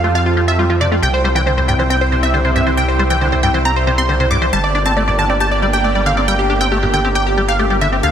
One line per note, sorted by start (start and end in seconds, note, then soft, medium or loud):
0.00 1.00 F2 medium
0.00 0.99 F3 medium
0.00 0.08 A3 medium
0.00 4.49 C4 medium
0.00 0.13 F4 medium
0.00 0.99 G4 medium
0.00 0.99 A4 medium
0.04 0.13 F4 medium
0.15 0.21 F4 medium
0.15 0.24 F5 medium
0.26 0.35 F4 medium
0.37 0.41 F3 medium
0.37 0.46 F4 medium
0.48 0.52 F4 medium
0.48 0.57 E5 medium
0.59 0.65 G3 medium
0.59 0.67 F4 medium
0.59 0.68 F4 medium
0.69 0.76 F3 medium
0.69 0.78 F4 medium
0.69 0.79 F4 medium
0.80 0.87 C3 loud
0.80 0.89 D5 medium
0.80 0.90 D5 medium
0.91 0.96 A3 medium
0.91 1.00 F4 medium
0.91 1.01 F4 medium
1.02 4.51 C2 medium
1.02 1.09 C3 medium
1.02 4.49 C3 medium
1.02 4.49 E4 medium
1.02 4.49 G4 medium
1.02 1.11 G5 loud
1.02 1.12 G5 loud
1.14 1.22 C5 medium
1.24 1.29 G3 medium
1.24 1.33 C5 medium
1.35 1.42 E3 medium
1.35 1.44 G5 medium
1.46 1.53 D3 medium
1.46 1.55 C5 medium
1.57 1.60 C2 medium
1.57 1.66 C5 medium
1.68 1.75 G2 loud
1.68 1.77 G5 medium
1.79 1.83 E3 medium
1.79 1.88 C5 medium
1.90 1.97 C4 medium
1.90 1.99 G5 medium
2.01 2.10 C5 medium
2.12 2.16 C3 medium
2.12 2.21 C5 medium
2.23 2.27 C4 medium
2.23 2.32 E5 medium
2.34 2.40 D3 medium
2.34 2.43 C5 medium
2.45 2.51 C3 medium
2.45 2.53 C5 medium
2.56 2.62 G2 loud
2.56 2.64 E5 medium
2.56 2.65 E5 medium
2.67 2.71 E3 medium
2.67 2.75 C5 medium
2.77 2.84 C3 medium
2.77 2.86 G5 medium
2.77 2.86 G5 loud
2.88 2.97 C5 medium
2.99 3.04 G3 medium
2.99 3.08 C5 medium
3.10 3.17 E3 medium
3.10 3.19 G5 medium
3.21 3.28 D3 medium
3.21 3.30 C5 medium
3.32 3.35 C2 medium
3.32 3.41 C5 medium
3.43 3.50 G2 loud
3.43 3.52 G5 medium
3.54 3.59 E3 medium
3.54 3.63 C5 medium
3.65 3.72 C4 medium
3.65 3.74 A#5 medium
3.76 3.85 C5 medium
3.87 3.91 C3 medium
3.87 3.96 C5 medium
3.98 4.02 C4 medium
3.98 4.07 C6 medium
4.09 4.15 D3 medium
4.09 4.18 C5 medium
4.20 4.26 C3 medium
4.20 4.29 C5 medium
4.31 4.37 G2 loud
4.31 4.40 D6 medium
4.42 4.46 E3 medium
4.42 4.51 C5 medium
4.53 8.01 G1 medium
4.53 4.59 G3 medium
4.53 8.00 A#3 medium
4.53 8.00 D4 medium
4.53 8.00 G4 medium
4.53 4.62 A5 loud
4.64 4.73 D5 medium
4.75 4.79 D4 medium
4.75 4.84 D5 medium
4.86 4.92 C4 medium
4.86 4.94 A5 medium
4.86 4.95 A5 medium
4.97 5.03 A3 medium
4.97 5.05 D5 medium
4.97 5.06 D5 medium
5.08 5.10 G2 medium
5.08 5.16 D5 medium
5.08 5.17 D5 medium
5.19 5.25 D3 loud
5.19 5.27 A5 medium
5.30 5.34 C4 medium
5.30 5.38 D5 medium
5.40 5.47 G4 medium
5.40 5.49 A5 medium
5.51 5.60 D5 medium
5.62 5.67 G3 medium
5.62 5.71 D5 medium
5.73 5.78 G4 medium
5.73 5.82 G5 medium
5.84 5.91 A3 medium
5.84 5.93 D5 medium
5.95 6.02 G3 medium
5.95 6.04 D5 medium
6.06 6.13 D3 loud
6.06 6.15 F5 medium
6.17 6.21 C4 medium
6.17 6.26 D5 medium
6.28 6.35 G3 medium
6.28 6.37 G5 loud
6.39 6.48 G4 medium
6.50 6.54 D4 medium
6.50 6.59 G4 medium
6.61 6.67 C4 medium
6.61 6.70 G5 medium
6.72 6.78 A3 medium
6.72 6.80 G4 medium
6.72 6.81 G4 medium
6.83 6.85 G2 medium
6.83 6.91 G4 medium
6.83 6.92 G4 medium
6.94 7.00 D3 loud
6.94 7.02 G5 medium
7.05 7.09 C4 medium
7.05 7.13 G4 medium
7.15 7.22 G4 medium
7.15 7.24 G5 medium
7.15 7.24 G5 loud
7.27 7.35 G4 medium
7.37 7.42 G3 medium
7.37 7.46 G4 medium
7.48 7.53 G4 medium
7.48 7.57 F5 medium
7.59 7.66 A3 medium
7.59 7.68 G4 medium
7.70 7.77 G3 medium
7.70 7.79 G4 medium
7.81 7.88 D3 loud
7.81 7.90 E5 medium
7.92 7.97 C4 medium
7.92 8.01 G4 medium
8.03 8.12 D2 medium
8.03 8.10 D3 medium
8.03 8.12 D3 medium
8.03 8.12 A3 medium
8.03 8.12 C4 medium
8.03 8.12 F4 medium
8.03 8.12 F5 loud